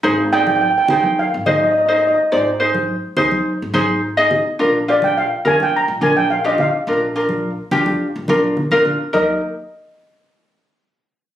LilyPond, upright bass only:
\new Staff \with { instrumentName = "Upright bass" } { \clef bass \time 4/4 \key aes \lydian \tempo 4 = 106 aes,,4. ees,8 r16 aes,,4.~ aes,,16 | aes,,4. ees,8 r16 aes,,4.~ aes,,16 | bes,,4. f,8 r16 bes,,4.~ bes,,16 | bes,,4. f,8 r16 bes,,4.~ bes,,16 |
ees,8 r2. r8 | }